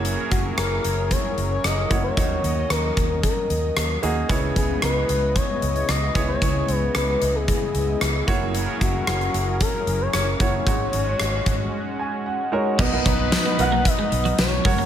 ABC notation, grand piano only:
X:1
M:4/4
L:1/16
Q:1/4=113
K:C#dor
V:1 name="Grand piano"
[A,EFc]4- [A,EFc] z8 z [A,EFc]2 | [A,DFc]6- [A,DFc] z6 z [A,DFG]2 | [B,EGc]6- [B,EGc] z6 z [B,EGc]2 | [B,EGc]6- [B,EGc] z6 z [A,EFc]2- |
[A,EFc]4- [A,EFc] z8 z [A,EFc]2 | [G,DFc]6- [G,DFc] z6 z [G,DFA]2 | [B,DFAd] [B,DFAd]4 z [B,DFAf]6- [B,DFAf] z [FAc]2 |]
V:2 name="Grand piano" clef=bass
z16 | D,6 z8 z2 | C,6 z8 z2 | C,6 z8 z2 |
z16 | G,,6 z4 g2 f4 | B,,6 z8 z2 |]